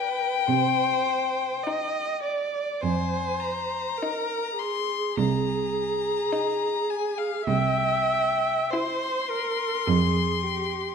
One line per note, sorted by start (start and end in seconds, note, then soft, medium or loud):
0.00 0.20 F4 medium
0.00 0.48 B4 medium
0.00 2.24 G5 medium
0.46 1.44 C3 medium
0.46 1.65 C5 medium
1.63 2.55 D#4 medium
1.63 2.23 D#5 medium
2.23 2.82 D5 medium
2.81 3.78 F2 medium
2.81 3.99 C5 medium
2.81 3.42 G#5 medium
3.40 4.61 A#5 medium
3.98 4.58 A#4 medium
4.03 4.92 D#4 medium
4.58 7.43 G#4 medium
4.58 5.18 C6 loud
5.18 6.10 C2 medium
5.18 6.91 A#5 medium
6.32 7.21 D#4 medium
6.90 7.19 G#5 medium
7.18 7.47 F5 medium
7.46 8.49 C2 medium
7.46 8.72 E5 medium
7.46 8.72 G5 medium
8.71 9.62 E4 medium
8.71 9.31 C5 medium
8.71 10.95 C6 medium
9.30 9.88 A#4 medium
9.86 10.81 F2 medium
9.86 10.45 G#4 medium
10.43 10.95 G4 medium